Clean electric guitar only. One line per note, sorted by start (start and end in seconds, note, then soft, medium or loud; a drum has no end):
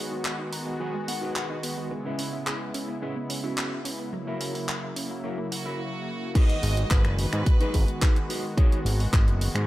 0.00 0.32 F#4 medium
0.00 0.32 G#4 medium
0.00 0.32 C#5 medium
0.53 0.78 A#5 medium
0.80 0.94 F#4 medium
0.80 0.94 G#4 medium
0.80 0.94 B4 medium
0.80 1.06 G#5 medium
1.08 1.34 F#5 medium
1.08 muted clean electric guitar stroke soft
1.21 1.56 F#4 medium
1.21 1.56 G#4 medium
1.21 1.57 B4 medium
1.35 1.49 F#5 medium
1.50 1.62 D#5 medium
1.63 1.89 B4 medium
1.91 muted clean electric guitar stroke loud
2.05 2.54 C#4 medium
2.05 2.54 E4 medium
2.05 2.54 B4 medium
3.02 3.16 C#4 medium
3.02 3.16 E4 medium
3.02 3.16 B4 medium
3.30 muted clean electric guitar stroke soft
3.43 3.78 C#4 medium
3.43 3.78 E4 medium
3.43 3.79 F#4 medium
4.13 muted clean electric guitar stroke loud
4.27 4.76 E4 medium
4.27 4.76 F#4 medium
4.27 4.76 A#4 medium
5.24 5.39 E4 medium
5.24 5.39 F#4 medium
5.24 5.39 A#4 medium
5.52 muted clean electric guitar stroke soft
5.66 5.80 E4 medium
5.66 5.80 F#4 medium
5.66 5.80 A#4 medium
6.35 6.56 D#4 loud
6.35 6.56 F#4 loud
6.35 6.56 G#4 loud
6.35 6.56 B4 loud
6.77 muted clean electric guitar stroke medium
7.60 7.74 D#4 loud
7.60 7.74 F#4 loud
7.60 7.74 G#4 loud
7.60 7.74 B4 loud
7.88 muted clean electric guitar stroke soft
8.02 8.16 D#4 medium
8.02 8.16 F#4 medium
8.02 8.16 G#4 medium
8.02 8.16 B4 loud
8.29 8.44 D#4 medium
8.29 8.44 F#4 medium
8.29 8.44 G#4 medium
8.29 8.44 B4 loud
8.57 8.79 D#4 loud
8.57 8.79 F#4 loud
8.57 8.79 G#4 loud
8.57 8.79 C#5 loud
8.99 muted clean electric guitar stroke medium